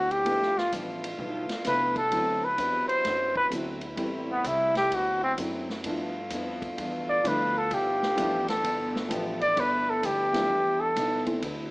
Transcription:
Already playing: upright bass D2, saxophone section C3 F#3 B3 E4, steel-string acoustic guitar D3 C4 F#4 B4, trumpet F#4
0.11 trumpet G4, ride
0.25 upright bass G1, steel-string acoustic guitar G2 F3 B3 E4, saxophone section B2 A3 E4 F4, grand piano F3 A3 B3 D4 E4, kick, ride
0.42 snare
0.58 trumpet F4, snare
0.72 upright bass A1, steel-string acoustic guitar G2 F3 B3 E4, kick, hi-hat pedal, ride
1.04 ride
1.18 upright bass B1, steel-string acoustic guitar G2 F3 B3 E4, kick
1.49 muted upright bass stroke, snare, ride
1.64 upright bass C2, steel-string acoustic guitar G2 F3 B3 E4, grand piano F3 A3 B3 D4 E4, trumpet B4, kick, snare, hi-hat pedal, ride
1.96 trumpet A4, kick, ride
2.10 upright bass D2, saxophone section C3 F#3 E4, steel-string acoustic guitar D3 C4 F#4 B4, grand piano F#3 A3 B3 C4 E4, kick, ride
2.44 trumpet B4
2.57 upright bass E2, steel-string acoustic guitar D3 C4 F#4 B4, kick, hi-hat pedal, ride
2.88 trumpet C5, muted upright bass stroke, ride
3.03 upright bass F#2, steel-string acoustic guitar D3 C4 F#4 B4, kick, snare, ride
3.36 trumpet B4, kick
3.50 upright bass D2, steel-string acoustic guitar D3 C4 F#4 B4, grand piano F#3 A3 B3 C4 E4, kick, hi-hat pedal, ride
3.81 ride
3.96 upright bass A1, steel-string acoustic guitar A2 G3 C4 E4, grand piano G3 A3 B3 C4 E4, kick, ride
4.00 saxophone section C3 G3 A3
4.32 trumpet B3
4.44 upright bass C2, steel-string acoustic guitar A2 G3 C4 E4, trumpet E4, kick, hi-hat pedal, ride
4.75 trumpet G4, snare, ride
4.91 upright bass D2, saxophone section C3 F#3 B3, steel-string acoustic guitar D3 C4 F#4 B4, trumpet F#4, kick, ride
5.24 trumpet C4
5.37 upright bass F#2, steel-string acoustic guitar D3 C4 F#4 B4, grand piano F#3 A3 B3 C4 E4, kick, hi-hat pedal, ride
5.70 snare
5.84 upright bass G2, steel-string acoustic guitar G2 F3 B3 E4, saxophone section D3 A3 B3 F4, grand piano F3 A3 B3 D4 E4, kick, ride
6.30 upright bass F2, steel-string acoustic guitar G2 F3 B3, kick, hi-hat pedal, ride
6.35 steel-string acoustic guitar E4
6.62 kick, ride
6.78 upright bass E2, steel-string acoustic guitar G2 F3 B3 E4, kick, ride
7.09 trumpet D5
7.24 upright bass D2, steel-string acoustic guitar G2 F3 B3 E4, grand piano F3 A3 B3 D4 E4, trumpet B4, kick, hi-hat pedal, ride
7.58 trumpet A4
7.70 upright bass B1, steel-string acoustic guitar G2 F3 B3 E4, kick, ride
7.74 trumpet G4
8.02 snare
8.15 upright bass A1, steel-string acoustic guitar G2 F3 B3 E4, grand piano F3 A3 B3 D4 E4, kick, hi-hat pedal, ride
8.48 trumpet A4, snare, ride
8.61 upright bass G1, steel-string acoustic guitar G2 F3 B3 E4, saxophone section E4, kick, ride
8.96 snare
9.09 upright bass A1, steel-string acoustic guitar G2 F3 B3 E4, grand piano F3 A3 B3 D4 G4, kick, hi-hat pedal, ride
9.41 trumpet D5, ride
9.55 upright bass G1, steel-string acoustic guitar G2 F3 B3 E4, kick, ride
9.60 trumpet B4
9.90 trumpet A4
10.02 upright bass D2, steel-string acoustic guitar G2 F3 B3 E4, trumpet G4, kick, hi-hat pedal, ride
10.33 grand piano F3 A3 B3 D4 E4, snare, ride
10.49 upright bass E2, steel-string acoustic guitar G2 F3 B3 E4, kick
10.80 trumpet A4
10.95 upright bass B1, steel-string acoustic guitar G2 F3 B3 E4, kick, hi-hat pedal, ride
11.26 grand piano E3 A3 B3 C4 A4, ride
11.42 upright bass D2, saxophone section C3 F#3 B3 E4, steel-string acoustic guitar D3 C4 F#4 B4, kick, ride

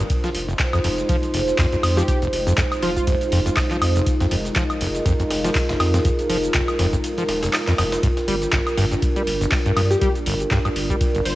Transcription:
0.10 analog synth pad G#3 D#4 F4 C5, kick, closed hi-hat, ride, cabasa
0.24 acid bass F3, snare, closed hi-hat, cabasa
0.35 analog synth bass F1, open hi-hat, ride
0.48 acid bass F1, snare, closed hi-hat, cabasa
0.59 kick, snare, clap, closed hi-hat, ride, cabasa
0.73 acid bass F2, closed hi-hat, cabasa, high woodblock
0.84 analog synth bass F1, acid bass F2, open hi-hat, ride
0.98 snare, closed hi-hat, cabasa
1.09 acid bass F3, kick, closed hi-hat, ride, cabasa
1.23 closed hi-hat, cabasa
1.34 acid bass F1, analog synth bass F1, open hi-hat
1.48 snare, closed hi-hat, cabasa
1.58 acid bass F2, kick, snare, clap, open hi-hat, ride, cabasa
1.72 acid bass F2, closed hi-hat, cabasa
1.83 analog synth bass F2, open hi-hat, ride, high woodblock
1.97 acid bass F3, digital synth lead G4, snare, closed hi-hat, cabasa
2.08 digital synth lead G4, kick, closed hi-hat, ride, cabasa
2.22 acid bass F1, closed hi-hat, cabasa
2.33 analog synth bass F1, open hi-hat, ride
2.47 acid bass F2, closed hi-hat, ride, cabasa
2.58 acid bass F2, kick, snare, clap, closed hi-hat, ride, cabasa
2.72 closed hi-hat, cabasa, high woodblock
2.82 analog synth bass F1, acid bass F3, digital synth lead F4, open hi-hat, ride
2.96 digital synth lead F4, kick, closed hi-hat, cabasa
3.07 acid bass F1, kick, closed hi-hat, ride, cabasa
3.21 closed hi-hat, cabasa
3.32 analog synth bass F1, acid bass F2, open hi-hat, ride
3.46 acid bass F2, snare, closed hi-hat, cabasa
3.57 kick, snare, clap, open hi-hat, ride, cabasa, high woodblock
3.71 acid bass F3, clap, closed hi-hat, cabasa
3.82 analog synth bass F2, open hi-hat, ride, high woodblock
3.96 acid bass F1, closed hi-hat, ride, cabasa
4.06 analog synth pad A#4, kick, closed hi-hat, ride, cabasa
4.20 acid bass F2, snare, closed hi-hat, cabasa
4.31 analog synth bass F1, acid bass F2, open hi-hat, ride
4.45 snare, closed hi-hat, cabasa
4.56 acid bass F3, kick, snare, clap, closed hi-hat, ride, cabasa
4.70 closed hi-hat, cabasa, high woodblock
4.81 acid bass F1, analog synth bass F1, open hi-hat, ride
4.95 snare, closed hi-hat, cabasa
5.06 acid bass F2, kick, closed hi-hat, ride, cabasa
5.19 acid bass F2, closed hi-hat, cabasa
5.30 analog synth bass F1, snare, open hi-hat, ride
5.44 acid bass F3, snare, closed hi-hat, ride, cabasa
5.55 kick, snare, clap, open hi-hat, ride, cabasa
5.69 acid bass F1, snare, closed hi-hat, ride, cabasa
5.80 analog synth bass F2, snare, open hi-hat, ride, high woodblock
5.94 acid bass F2, snare, closed hi-hat, ride, cabasa
6.05 acid bass F2, kick, closed hi-hat, ride, cabasa
6.19 closed hi-hat, cabasa
6.30 analog synth bass F1, acid bass F3, open hi-hat, ride
6.44 closed hi-hat, ride, cabasa
6.54 acid bass F1, kick, snare, clap, closed hi-hat, ride, cabasa
6.68 closed hi-hat, cabasa, high woodblock
6.79 analog synth bass F1, acid bass F2, snare, open hi-hat, ride
6.93 acid bass F2, kick, closed hi-hat, cabasa
7.04 closed hi-hat, ride, cabasa
7.18 acid bass F3, snare, closed hi-hat, cabasa
7.29 analog synth bass D#1, snare, open hi-hat, ride
7.43 acid bass F1, snare, closed hi-hat, ride, cabasa
7.54 snare, clap, open hi-hat, ride, cabasa, high woodblock
7.67 acid bass F2, snare, clap, closed hi-hat, ride, cabasa
7.78 analog synth bass F1, acid bass F2, snare, open hi-hat, ride, high woodblock
7.92 snare, closed hi-hat, ride, cabasa
8.03 acid bass G2, analog synth pad G3 D4, kick, closed hi-hat, ride, cabasa
8.17 snare, closed hi-hat, cabasa
8.28 analog synth bass G1, acid bass G3, open hi-hat, ride
8.42 snare, closed hi-hat, cabasa
8.53 acid bass G1, kick, snare, clap, closed hi-hat, ride, cabasa
8.67 closed hi-hat, cabasa, high woodblock
8.78 analog synth bass G1, acid bass G2, open hi-hat, ride
8.91 acid bass G2, snare, closed hi-hat, cabasa
9.02 kick, closed hi-hat, ride, cabasa
9.16 acid bass G3, closed hi-hat, cabasa
9.27 analog synth bass G1, open hi-hat
9.41 acid bass G1, snare, closed hi-hat, cabasa
9.52 kick, snare, clap, open hi-hat, ride, cabasa
9.66 acid bass G2, closed hi-hat, cabasa
9.77 analog synth bass G2, acid bass G2, open hi-hat, ride, high woodblock
9.91 digital synth lead G4, snare, closed hi-hat, cabasa
10.01 acid bass G3, digital synth lead G4, kick, closed hi-hat, ride, cabasa
10.15 closed hi-hat, cabasa
10.26 analog synth bass G1, acid bass G1, open hi-hat, ride
10.40 closed hi-hat, ride, cabasa
10.51 acid bass G2, kick, snare, clap, closed hi-hat, ride, cabasa
10.65 acid bass G2, closed hi-hat, cabasa, high woodblock
10.76 analog synth bass G1, open hi-hat, ride
10.90 acid bass G3, kick, closed hi-hat, cabasa
11.01 kick, closed hi-hat, ride, cabasa
11.15 acid bass G1, closed hi-hat, cabasa
11.25 analog synth bass G1, digital synth lead C5, open hi-hat, ride

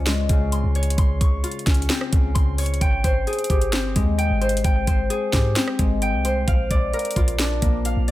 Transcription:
Already playing: 808-style bass C#2, harp C#4 D#4 F4 D#5 C6 C#6
0.06 harp G#3, snare, closed hi-hat
0.29 808-style bass C#2, harp C#3, kick, closed hi-hat
0.52 harp C6, closed hi-hat
0.64 808-style bass C#2
0.75 harp C#5, closed hi-hat
0.83 closed hi-hat
0.90 closed hi-hat
0.98 808-style bass C#2, harp C6, kick, closed hi-hat
1.21 808-style bass C#2, harp C#6, kick, closed hi-hat
1.43 harp F4, closed hi-hat
1.51 closed hi-hat
1.59 closed hi-hat
1.66 808-style bass C#2, harp C#4, kick, snare, closed hi-hat
1.74 closed hi-hat
1.82 closed hi-hat
1.90 harp C4, snare, closed hi-hat
2.01 cross-stick
2.13 808-style bass C#2, harp C#3, kick, closed hi-hat
2.35 808-style bass C#2, harp C6, kick, closed hi-hat
2.58 harp C#5, closed hi-hat, open hi-hat
2.66 closed hi-hat
2.74 closed hi-hat
2.81 808-style bass G#1, harp G5, kick, closed hi-hat
3.04 808-style bass G#1, harp C5, kick, closed hi-hat
3.27 harp G#4, closed hi-hat
3.33 closed hi-hat
3.39 closed hi-hat
3.44 closed hi-hat
3.50 808-style bass G#1, harp G4, kick, closed hi-hat
3.61 closed hi-hat
3.73 808-style bass G1, harp C4, snare, closed hi-hat
3.96 808-style bass D#2, harp G#3, kick, closed hi-hat
4.18 harp G5, closed hi-hat
4.30 808-style bass G#1
4.41 harp C5, closed hi-hat
4.49 closed hi-hat
4.57 closed hi-hat
4.64 808-style bass G#1, harp G5, kick, closed hi-hat
4.87 808-style bass G#1, harp C5, kick, closed hi-hat
5.10 harp G#4, closed hi-hat
5.33 808-style bass G#2, harp G4, kick, snare, closed hi-hat
5.56 harp C4, snare, closed hi-hat
5.68 cross-stick
5.79 808-style bass G#1, harp G#3, kick, closed hi-hat
6.02 harp G5, closed hi-hat
6.13 808-style bass C2
6.25 harp C5, closed hi-hat
6.47 808-style bass A#1, harp F5, kick, closed hi-hat
6.71 808-style bass A#1, harp D5, kick, closed hi-hat
6.93 harp A#4, closed hi-hat
6.99 closed hi-hat
7.05 closed hi-hat
7.11 closed hi-hat
7.16 808-style bass A#1, harp F4, kick, closed hi-hat
7.28 closed hi-hat
7.39 harp D4, snare, closed hi-hat
7.62 808-style bass A#1, harp A#3, kick, closed hi-hat
7.85 harp F5, closed hi-hat
7.97 808-style bass A#1
8.08 closed hi-hat

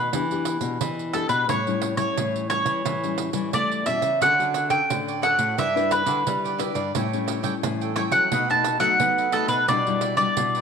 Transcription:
Already playing: mandolin B4
0.13 nylon-string guitar E3 B3 D4 G4, pandeiro
0.31 nylon-string guitar B3 D4 G4, pandeiro
0.45 pandeiro
0.61 nylon-string guitar B2 B3 D4 G4, pandeiro
0.81 nylon-string guitar B2 E3, pandeiro
0.99 pandeiro
1.13 nylon-string guitar B3 D4 G4, mandolin A4, pandeiro
1.29 nylon-string guitar B2, mandolin B4, pandeiro
1.49 nylon-string guitar A2 G3 C#4 E4, mandolin C#5, pandeiro
1.67 nylon-string guitar G3 C#4 E4, pandeiro
1.82 pandeiro
1.97 nylon-string guitar G3 C#4 E4, mandolin C#5, pandeiro
2.17 nylon-string guitar A2 E3, pandeiro
2.36 pandeiro
2.49 nylon-string guitar G3 C#4 E4, mandolin C#5, pandeiro
2.65 nylon-string guitar E3, pandeiro
2.85 nylon-string guitar A2 E3, pandeiro
3.03 nylon-string guitar G3 C#4 E4, pandeiro
3.18 pandeiro
3.33 nylon-string guitar E3 G3 C#4 E4, pandeiro
3.53 nylon-string guitar E3 A3, mandolin D5, pandeiro
3.72 pandeiro
3.86 nylon-string guitar B2 G3 C#4 E4, mandolin E5, pandeiro
4.02 nylon-string guitar C#3, pandeiro
4.21 nylon-string guitar D3 C#4 F#4 A4, cavaquinho F#4 A4 C#5 D5, mandolin F#5, pandeiro
4.39 nylon-string guitar C#4 F#4 A4, pandeiro
4.54 cavaquinho F#4 A4 C#5 D5, pandeiro
4.69 nylon-string guitar C#4 A4, cavaquinho F#4 A4 C#5 D5, mandolin G5, pandeiro
4.90 nylon-string guitar A2 D3, pandeiro
5.08 cavaquinho A4 C#5 D5, pandeiro
5.22 nylon-string guitar C#4 F#4 A4, cavaquinho F#4 A4 C#5 D5, mandolin F#5, pandeiro
5.38 nylon-string guitar A2, cavaquinho A4 C#5 D5, pandeiro
5.57 nylon-string guitar G2 G3 D4 E4 B4, cavaquinho E4 G4 B4 D5, mandolin E5, pandeiro
5.76 nylon-string guitar D4 E4 B4, cavaquinho G4 B4 D5, pandeiro
5.91 mandolin B4, pandeiro
6.06 nylon-string guitar D3 D4 E4 B4, cavaquinho E4 G4 B4 D5, pandeiro
6.26 nylon-string guitar D3 G3, pandeiro
6.44 cavaquinho G4 B4 D5, pandeiro
6.58 nylon-string guitar D4 E4 B4, cavaquinho E4 G4 B4 D5, pandeiro
6.74 nylon-string guitar G2, cavaquinho G4 B4 D5, pandeiro
6.95 nylon-string guitar A2 G3 C#4 E4, cavaquinho G4 A4 C#5 G5, pandeiro
7.13 nylon-string guitar G3 C#4 E4, pandeiro
7.27 cavaquinho G4 A4 C#5 G5, pandeiro
7.43 nylon-string guitar G3 C#4 E4, cavaquinho G4 A4 C#5 G5, pandeiro
7.63 nylon-string guitar A2 E3, pandeiro
7.81 cavaquinho A4 C#5 G5, pandeiro
7.96 nylon-string guitar G3 C#4 E4, cavaquinho G4 A4 C#5 G5, mandolin C#5, pandeiro
8.11 nylon-string guitar F#3, cavaquinho A4 C#5 G5, mandolin F#5, pandeiro
8.32 nylon-string guitar B2 A3 D#4 F#4, cavaquinho D#4 A4 B4 D#5, pandeiro
8.50 nylon-string guitar A3 D#4 F#4, cavaquinho A4 B4 D#5, mandolin A5, pandeiro
8.64 pandeiro
8.80 nylon-string guitar F#3 A3 D#4 F#4, cavaquinho D#4 A4 B4 D#5, mandolin F#5, pandeiro
9.00 nylon-string guitar F#3 B3, pandeiro
9.18 cavaquinho A4 B4 D#5, pandeiro
9.32 nylon-string guitar A3 D#4 F#4, cavaquinho D#4 A4 B4 D#5, mandolin A4, pandeiro
9.48 nylon-string guitar B2, cavaquinho A4 B4 D#5, mandolin B4, pandeiro
9.68 nylon-string guitar B2 G3 D4 E4, cavaquinho E4 G4 B4 D5, mandolin D5, pandeiro
9.87 nylon-string guitar G3 D4 E4, pandeiro
10.01 cavaquinho E4 G4 B4 D5, pandeiro
10.17 nylon-string guitar G3 D4 E4, cavaquinho E4 G4 B4 D5, mandolin D5, pandeiro
10.37 nylon-string guitar B2, pandeiro
10.55 cavaquinho G4 B4 D5, pandeiro

